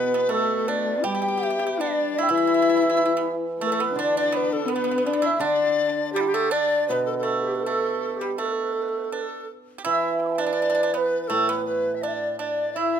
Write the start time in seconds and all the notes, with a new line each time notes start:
Already playing: B2 E3 B3 B4
0.14 B3
0.29 A3 A4
0.68 D4 D5
1.04 G3 G4 G5
1.15 G4
1.22 G4
1.28 G4
1.37 G4
1.43 G4 E5
1.50 G4
1.59 G4
1.67 G4
1.80 D4 D5
2.18 E4 E5
2.22 G5
2.29 E3 E4 E5
2.33 E5
2.37 E4
2.47 E4
2.54 E4
2.62 E4
2.69 E4
2.77 E4
2.82 E4
2.89 E4
2.97 E4
3.05 E4
3.17 B3
3.59 A3 A4
3.63 A4 B4
3.70 A3 A4
3.74 A4
3.80 B3 B4
3.93 D3 D4 D5
3.99 D4 D5
4.17 D4 D5
4.32 B3 B4
4.36 B4
4.53 A4
4.65 B3
4.70 B4
4.76 B3
4.84 B3
4.91 B3
4.98 B3
5.06 B3 D4 D5
5.13 B3
5.22 E4 E5
5.26 E5
5.35 E5
5.39 D3 D4 D5
5.45 D5
6.13 G3 G4
6.21 E4
6.28 G4
6.34 A3 A4
6.50 D4 D5
6.88 B2 B3 B4
6.92 B4
7.05 A4
7.10 A4 B4
7.18 A4
7.23 A3 A4
7.42 G4
7.49 G4
7.55 B4
7.60 A4
7.66 A3
8.12 A4
8.17 G4
8.21 G3 G4
8.36 A3 A4
8.46 B4
8.52 A4
8.63 B4
8.73 A4
8.82 B4
8.89 A4
8.98 B4
9.05 A4
9.12 D4 B4
9.21 A4
9.78 G4
9.85 E3 E4 E5
10.19 G5 E6
10.23 B5 D6
10.29 A5
10.34 G5
10.38 D4 D5 E5
10.46 D4
10.53 D4
10.62 D4
10.70 D4
10.75 D4
10.83 D4
10.94 B3 B4
11.24 A4 B4
11.30 A2 A3 A4
11.48 B3 B4
11.65 B4
11.95 E5
12.02 D4 D5
12.08 E5
12.14 D5
12.39 D4 D5
12.73 E4 E5
12.78 E5